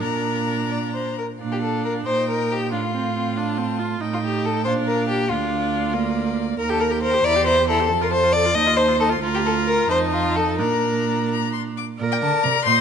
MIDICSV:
0, 0, Header, 1, 5, 480
1, 0, Start_track
1, 0, Key_signature, -2, "major"
1, 0, Tempo, 464396
1, 21, Time_signature, 6, 3, 24, 8
1, 1461, Tempo, 439560
1, 2421, Tempo, 428878
1, 6741, Tempo, 436047
1, 9621, Tempo, 450113
1, 11061, Tempo, 468750
1, 12981, Tempo, 440852
1, 13867, End_track
2, 0, Start_track
2, 0, Title_t, "Violin"
2, 0, Program_c, 0, 40
2, 25, Note_on_c, 0, 82, 63
2, 1204, Note_off_c, 0, 82, 0
2, 1448, Note_on_c, 0, 77, 43
2, 2132, Note_off_c, 0, 77, 0
2, 2169, Note_on_c, 0, 79, 50
2, 2912, Note_on_c, 0, 77, 46
2, 2929, Note_off_c, 0, 79, 0
2, 3630, Note_on_c, 0, 81, 54
2, 3647, Note_off_c, 0, 77, 0
2, 4348, Note_off_c, 0, 81, 0
2, 4355, Note_on_c, 0, 79, 50
2, 5079, Note_on_c, 0, 77, 58
2, 5096, Note_off_c, 0, 79, 0
2, 5774, Note_off_c, 0, 77, 0
2, 5781, Note_on_c, 0, 77, 56
2, 6490, Note_on_c, 0, 74, 63
2, 6507, Note_off_c, 0, 77, 0
2, 7213, Note_off_c, 0, 74, 0
2, 7219, Note_on_c, 0, 82, 61
2, 7332, Note_on_c, 0, 79, 59
2, 7348, Note_off_c, 0, 82, 0
2, 7446, Note_on_c, 0, 82, 61
2, 7463, Note_off_c, 0, 79, 0
2, 7581, Note_on_c, 0, 79, 57
2, 7598, Note_off_c, 0, 82, 0
2, 7694, Note_off_c, 0, 79, 0
2, 7701, Note_on_c, 0, 82, 53
2, 7798, Note_on_c, 0, 79, 55
2, 7814, Note_off_c, 0, 82, 0
2, 7925, Note_off_c, 0, 79, 0
2, 7931, Note_on_c, 0, 82, 62
2, 8046, Note_on_c, 0, 84, 58
2, 8062, Note_off_c, 0, 82, 0
2, 8175, Note_on_c, 0, 82, 64
2, 8191, Note_off_c, 0, 84, 0
2, 8292, Note_on_c, 0, 84, 60
2, 8309, Note_off_c, 0, 82, 0
2, 8412, Note_off_c, 0, 84, 0
2, 8419, Note_on_c, 0, 82, 65
2, 8536, Note_on_c, 0, 84, 57
2, 8553, Note_off_c, 0, 82, 0
2, 8656, Note_off_c, 0, 84, 0
2, 8679, Note_on_c, 0, 81, 61
2, 8791, Note_on_c, 0, 84, 59
2, 8808, Note_off_c, 0, 81, 0
2, 8892, Note_on_c, 0, 81, 64
2, 8909, Note_off_c, 0, 84, 0
2, 9027, Note_on_c, 0, 84, 56
2, 9043, Note_off_c, 0, 81, 0
2, 9133, Note_off_c, 0, 84, 0
2, 9140, Note_on_c, 0, 81, 58
2, 9254, Note_on_c, 0, 84, 59
2, 9271, Note_off_c, 0, 81, 0
2, 9374, Note_off_c, 0, 84, 0
2, 9380, Note_on_c, 0, 81, 61
2, 9503, Note_on_c, 0, 84, 57
2, 9519, Note_off_c, 0, 81, 0
2, 9627, Note_on_c, 0, 81, 66
2, 9643, Note_off_c, 0, 84, 0
2, 9741, Note_on_c, 0, 84, 60
2, 9757, Note_off_c, 0, 81, 0
2, 9859, Note_off_c, 0, 84, 0
2, 9881, Note_on_c, 0, 81, 62
2, 9994, Note_on_c, 0, 84, 57
2, 10010, Note_off_c, 0, 81, 0
2, 10104, Note_off_c, 0, 84, 0
2, 10112, Note_on_c, 0, 82, 70
2, 10819, Note_on_c, 0, 81, 65
2, 10835, Note_off_c, 0, 82, 0
2, 11545, Note_off_c, 0, 81, 0
2, 11563, Note_on_c, 0, 82, 54
2, 12213, Note_off_c, 0, 82, 0
2, 12275, Note_on_c, 0, 82, 68
2, 12494, Note_off_c, 0, 82, 0
2, 12507, Note_on_c, 0, 84, 65
2, 12589, Note_off_c, 0, 84, 0
2, 12755, Note_on_c, 0, 86, 61
2, 12837, Note_off_c, 0, 86, 0
2, 13117, Note_on_c, 0, 79, 87
2, 13162, Note_off_c, 0, 79, 0
2, 13229, Note_on_c, 0, 81, 83
2, 13458, Note_on_c, 0, 82, 99
2, 13475, Note_off_c, 0, 81, 0
2, 13683, Note_off_c, 0, 82, 0
2, 13690, Note_on_c, 0, 84, 97
2, 13867, Note_off_c, 0, 84, 0
2, 13867, End_track
3, 0, Start_track
3, 0, Title_t, "Violin"
3, 0, Program_c, 1, 40
3, 9, Note_on_c, 1, 70, 46
3, 675, Note_off_c, 1, 70, 0
3, 732, Note_on_c, 1, 74, 61
3, 814, Note_off_c, 1, 74, 0
3, 974, Note_on_c, 1, 72, 56
3, 1216, Note_off_c, 1, 72, 0
3, 1220, Note_on_c, 1, 70, 47
3, 1303, Note_off_c, 1, 70, 0
3, 1577, Note_on_c, 1, 67, 63
3, 1626, Note_off_c, 1, 67, 0
3, 1684, Note_on_c, 1, 69, 58
3, 1928, Note_off_c, 1, 69, 0
3, 1935, Note_on_c, 1, 70, 67
3, 2022, Note_off_c, 1, 70, 0
3, 2171, Note_on_c, 1, 72, 74
3, 2410, Note_off_c, 1, 72, 0
3, 2426, Note_on_c, 1, 70, 67
3, 2673, Note_on_c, 1, 67, 68
3, 2690, Note_off_c, 1, 70, 0
3, 2905, Note_off_c, 1, 67, 0
3, 2911, Note_on_c, 1, 65, 65
3, 4094, Note_off_c, 1, 65, 0
3, 4485, Note_on_c, 1, 65, 67
3, 4531, Note_off_c, 1, 65, 0
3, 4599, Note_on_c, 1, 67, 70
3, 4843, Note_on_c, 1, 69, 70
3, 4860, Note_off_c, 1, 67, 0
3, 5052, Note_off_c, 1, 69, 0
3, 5059, Note_on_c, 1, 72, 82
3, 5148, Note_off_c, 1, 72, 0
3, 5298, Note_on_c, 1, 70, 69
3, 5533, Note_off_c, 1, 70, 0
3, 5550, Note_on_c, 1, 67, 76
3, 5788, Note_on_c, 1, 65, 64
3, 5805, Note_off_c, 1, 67, 0
3, 6983, Note_off_c, 1, 65, 0
3, 7358, Note_on_c, 1, 69, 84
3, 7470, Note_on_c, 1, 70, 77
3, 7487, Note_off_c, 1, 69, 0
3, 7701, Note_off_c, 1, 70, 0
3, 7708, Note_on_c, 1, 72, 95
3, 7946, Note_on_c, 1, 74, 108
3, 7963, Note_off_c, 1, 72, 0
3, 8183, Note_off_c, 1, 74, 0
3, 8190, Note_on_c, 1, 72, 98
3, 8420, Note_off_c, 1, 72, 0
3, 8444, Note_on_c, 1, 69, 93
3, 8665, Note_off_c, 1, 69, 0
3, 8803, Note_on_c, 1, 70, 75
3, 8845, Note_off_c, 1, 70, 0
3, 8902, Note_on_c, 1, 72, 105
3, 9137, Note_on_c, 1, 74, 106
3, 9154, Note_off_c, 1, 72, 0
3, 9382, Note_on_c, 1, 75, 113
3, 9399, Note_off_c, 1, 74, 0
3, 9624, Note_on_c, 1, 72, 99
3, 9640, Note_off_c, 1, 75, 0
3, 9859, Note_off_c, 1, 72, 0
3, 9873, Note_on_c, 1, 69, 89
3, 9958, Note_off_c, 1, 69, 0
3, 10236, Note_on_c, 1, 67, 78
3, 10279, Note_off_c, 1, 67, 0
3, 10356, Note_on_c, 1, 69, 74
3, 10441, Note_off_c, 1, 69, 0
3, 10586, Note_on_c, 1, 70, 90
3, 10816, Note_off_c, 1, 70, 0
3, 10832, Note_on_c, 1, 72, 92
3, 10917, Note_off_c, 1, 72, 0
3, 11062, Note_on_c, 1, 65, 79
3, 11311, Note_on_c, 1, 69, 75
3, 11326, Note_off_c, 1, 65, 0
3, 11538, Note_off_c, 1, 69, 0
3, 11544, Note_on_c, 1, 70, 72
3, 12250, Note_off_c, 1, 70, 0
3, 12991, Note_on_c, 1, 74, 64
3, 13716, Note_on_c, 1, 75, 62
3, 13732, Note_off_c, 1, 74, 0
3, 13867, Note_off_c, 1, 75, 0
3, 13867, End_track
4, 0, Start_track
4, 0, Title_t, "Viola"
4, 0, Program_c, 2, 41
4, 9, Note_on_c, 2, 62, 47
4, 1242, Note_off_c, 2, 62, 0
4, 1451, Note_on_c, 2, 62, 50
4, 2172, Note_on_c, 2, 63, 50
4, 2188, Note_off_c, 2, 62, 0
4, 2885, Note_off_c, 2, 63, 0
4, 2892, Note_on_c, 2, 62, 50
4, 2981, Note_off_c, 2, 62, 0
4, 3132, Note_on_c, 2, 60, 52
4, 3371, Note_off_c, 2, 60, 0
4, 3378, Note_on_c, 2, 60, 53
4, 3623, Note_on_c, 2, 62, 57
4, 3640, Note_off_c, 2, 60, 0
4, 3859, Note_on_c, 2, 60, 52
4, 3875, Note_off_c, 2, 62, 0
4, 4098, Note_on_c, 2, 65, 55
4, 4115, Note_off_c, 2, 60, 0
4, 4337, Note_on_c, 2, 63, 52
4, 4353, Note_off_c, 2, 65, 0
4, 5056, Note_off_c, 2, 63, 0
4, 5062, Note_on_c, 2, 62, 57
4, 5761, Note_off_c, 2, 62, 0
4, 5774, Note_on_c, 2, 62, 59
4, 6499, Note_on_c, 2, 58, 65
4, 6516, Note_off_c, 2, 62, 0
4, 7211, Note_off_c, 2, 58, 0
4, 7217, Note_on_c, 2, 70, 63
4, 7343, Note_on_c, 2, 67, 55
4, 7359, Note_off_c, 2, 70, 0
4, 7456, Note_on_c, 2, 70, 58
4, 7472, Note_off_c, 2, 67, 0
4, 7573, Note_on_c, 2, 67, 59
4, 7589, Note_off_c, 2, 70, 0
4, 7696, Note_off_c, 2, 67, 0
4, 7703, Note_on_c, 2, 70, 58
4, 7822, Note_on_c, 2, 67, 57
4, 7839, Note_off_c, 2, 70, 0
4, 7941, Note_off_c, 2, 67, 0
4, 7946, Note_on_c, 2, 64, 63
4, 8069, Note_on_c, 2, 67, 57
4, 8085, Note_off_c, 2, 64, 0
4, 8179, Note_on_c, 2, 64, 57
4, 8196, Note_off_c, 2, 67, 0
4, 8310, Note_on_c, 2, 67, 63
4, 8326, Note_off_c, 2, 64, 0
4, 8416, Note_off_c, 2, 67, 0
4, 8423, Note_on_c, 2, 64, 59
4, 8549, Note_on_c, 2, 67, 58
4, 8566, Note_off_c, 2, 64, 0
4, 8659, Note_off_c, 2, 67, 0
4, 8665, Note_on_c, 2, 69, 65
4, 8786, Note_on_c, 2, 65, 60
4, 8803, Note_off_c, 2, 69, 0
4, 8912, Note_on_c, 2, 69, 65
4, 8928, Note_off_c, 2, 65, 0
4, 9032, Note_on_c, 2, 65, 58
4, 9049, Note_off_c, 2, 69, 0
4, 9144, Note_off_c, 2, 65, 0
4, 9154, Note_on_c, 2, 69, 59
4, 9274, Note_on_c, 2, 65, 56
4, 9290, Note_off_c, 2, 69, 0
4, 9379, Note_off_c, 2, 65, 0
4, 9386, Note_on_c, 2, 63, 69
4, 9503, Note_on_c, 2, 65, 57
4, 9520, Note_off_c, 2, 63, 0
4, 9628, Note_on_c, 2, 63, 56
4, 9644, Note_off_c, 2, 65, 0
4, 9740, Note_on_c, 2, 65, 57
4, 9756, Note_off_c, 2, 63, 0
4, 9846, Note_off_c, 2, 65, 0
4, 9852, Note_on_c, 2, 63, 61
4, 9968, Note_on_c, 2, 65, 58
4, 9984, Note_off_c, 2, 63, 0
4, 10087, Note_off_c, 2, 65, 0
4, 10093, Note_on_c, 2, 65, 70
4, 10809, Note_on_c, 2, 63, 72
4, 10825, Note_off_c, 2, 65, 0
4, 11535, Note_on_c, 2, 62, 60
4, 11550, Note_off_c, 2, 63, 0
4, 12764, Note_off_c, 2, 62, 0
4, 12973, Note_on_c, 2, 70, 77
4, 13654, Note_off_c, 2, 70, 0
4, 13700, Note_on_c, 2, 72, 90
4, 13867, Note_off_c, 2, 72, 0
4, 13867, End_track
5, 0, Start_track
5, 0, Title_t, "Cello"
5, 0, Program_c, 3, 42
5, 7, Note_on_c, 3, 46, 51
5, 1241, Note_off_c, 3, 46, 0
5, 1456, Note_on_c, 3, 46, 54
5, 2136, Note_off_c, 3, 46, 0
5, 2173, Note_on_c, 3, 46, 51
5, 2895, Note_on_c, 3, 45, 52
5, 2912, Note_off_c, 3, 46, 0
5, 4345, Note_off_c, 3, 45, 0
5, 4351, Note_on_c, 3, 45, 57
5, 5063, Note_on_c, 3, 46, 58
5, 5080, Note_off_c, 3, 45, 0
5, 5774, Note_on_c, 3, 38, 61
5, 5791, Note_off_c, 3, 46, 0
5, 7215, Note_off_c, 3, 38, 0
5, 7223, Note_on_c, 3, 39, 68
5, 7898, Note_off_c, 3, 39, 0
5, 7945, Note_on_c, 3, 40, 73
5, 8659, Note_on_c, 3, 41, 71
5, 8676, Note_off_c, 3, 40, 0
5, 9379, Note_on_c, 3, 39, 74
5, 9396, Note_off_c, 3, 41, 0
5, 10086, Note_off_c, 3, 39, 0
5, 10092, Note_on_c, 3, 38, 72
5, 10770, Note_off_c, 3, 38, 0
5, 10817, Note_on_c, 3, 41, 67
5, 11542, Note_on_c, 3, 46, 59
5, 11557, Note_off_c, 3, 41, 0
5, 12767, Note_off_c, 3, 46, 0
5, 12987, Note_on_c, 3, 46, 71
5, 13209, Note_off_c, 3, 46, 0
5, 13233, Note_on_c, 3, 50, 72
5, 13320, Note_off_c, 3, 50, 0
5, 13467, Note_on_c, 3, 48, 67
5, 13554, Note_off_c, 3, 48, 0
5, 13705, Note_on_c, 3, 46, 69
5, 13867, Note_off_c, 3, 46, 0
5, 13867, End_track
0, 0, End_of_file